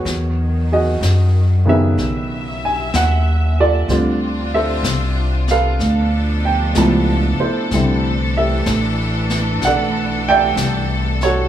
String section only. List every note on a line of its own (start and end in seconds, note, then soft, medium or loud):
0.06 1.96 D#3 soft
0.06 3.85 F#3 medium
1.98 3.87 E5 medium
3.90 5.79 C4 soft
3.90 5.79 D4 medium
3.90 5.79 F4 medium
5.81 7.70 B2 medium
5.81 7.70 F3 medium
5.81 7.69 D4 medium
5.81 11.48 A4 medium
7.70 11.48 E3 medium
7.70 11.48 A3 medium
7.70 11.48 D4 medium